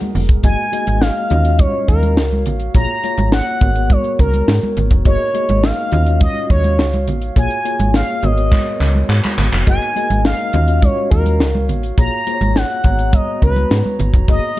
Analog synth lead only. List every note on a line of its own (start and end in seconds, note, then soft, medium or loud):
0.44 1.02 G#5 loud
1.01 1.60 F5 loud
1.59 1.88 C#5 loud
1.88 2.42 A#4 medium
2.75 3.29 A#5 loud
3.33 3.93 F#5 loud
3.92 4.19 C#5 loud
4.20 4.73 A#4 medium
5.06 5.65 C#5 loud
5.63 6.21 F5 loud
6.22 6.48 D#5 loud
6.51 7.04 C#5 medium
7.38 7.91 G#5 loud
7.96 8.25 F5 medium
8.24 9.10 D#5 medium
9.69 10.21 G#5 loud
10.26 10.84 F5 loud
10.83 11.10 C#5 loud
11.11 11.65 A#4 medium
11.98 12.58 A#5 loud
12.56 13.15 F#5 loud
13.14 13.42 D#5 loud
13.43 13.96 B4 medium
14.30 14.60 D#5 loud